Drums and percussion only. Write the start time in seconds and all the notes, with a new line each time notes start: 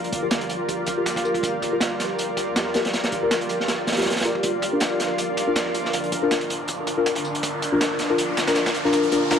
0.04 closed hi-hat
0.12 closed hi-hat, tambourine
0.31 snare, closed hi-hat, tambourine
0.41 closed hi-hat
0.49 closed hi-hat, tambourine
0.69 kick, closed hi-hat, tambourine
0.86 kick, closed hi-hat, tambourine
1.06 kick, snare, closed hi-hat, tambourine
1.16 kick, snare, closed hi-hat
1.25 tambourine
1.34 kick, closed hi-hat
1.43 kick, closed hi-hat, tambourine
1.62 kick, closed hi-hat, tambourine
1.80 snare, closed hi-hat, tambourine
2.00 snare, closed hi-hat, tambourine
2.19 closed hi-hat, tambourine
2.37 kick, snare, closed hi-hat, tambourine
2.56 snare, closed hi-hat, tambourine
2.66 snare
2.74 snare, closed hi-hat, tambourine
2.85 snare, closed hi-hat
2.93 snare, closed hi-hat, tambourine
3.04 snare, closed hi-hat
3.12 closed hi-hat, tambourine
3.31 snare, closed hi-hat, tambourine
3.41 closed hi-hat
3.49 closed hi-hat, tambourine
3.60 snare
3.68 snare, closed hi-hat, tambourine
3.87 snare, closed hi-hat, tambourine
3.92 snare, closed hi-hat
3.97 snare, closed hi-hat
4.02 snare, closed hi-hat
4.05 snare, closed hi-hat
4.10 snare, closed hi-hat
4.16 snare, closed hi-hat
4.20 snare, closed hi-hat
4.24 kick, closed hi-hat, tambourine
4.35 kick
4.43 kick, closed hi-hat, tambourine
4.62 kick, closed hi-hat, tambourine
4.80 snare, closed hi-hat, tambourine
5.00 snare, closed hi-hat, tambourine
5.18 closed hi-hat, tambourine
5.37 kick, snare, closed hi-hat, tambourine
5.56 snare, closed hi-hat, tambourine
5.66 snare
5.74 closed hi-hat, tambourine
5.85 snare
5.93 kick, closed hi-hat, tambourine
6.04 closed hi-hat
6.12 closed hi-hat, tambourine
6.31 snare, closed hi-hat, tambourine
6.41 closed hi-hat
6.50 closed hi-hat, tambourine
6.68 kick, closed hi-hat, tambourine
6.87 kick, closed hi-hat, tambourine
7.06 kick, snare, closed hi-hat, tambourine
7.15 kick, snare, closed hi-hat
7.25 tambourine
7.35 kick, closed hi-hat
7.43 kick, closed hi-hat, tambourine
7.62 kick, closed hi-hat, tambourine
7.81 snare, closed hi-hat, tambourine
7.99 snare, closed hi-hat, tambourine
8.18 closed hi-hat, tambourine
8.37 snare, closed hi-hat, tambourine
8.47 snare, closed hi-hat, tambourine
8.55 snare, closed hi-hat, tambourine
8.66 snare, closed hi-hat, tambourine
8.74 closed hi-hat, tambourine
8.85 snare
8.93 kick, closed hi-hat, tambourine
9.03 closed hi-hat
9.12 closed hi-hat, tambourine
9.31 snare, closed hi-hat, tambourine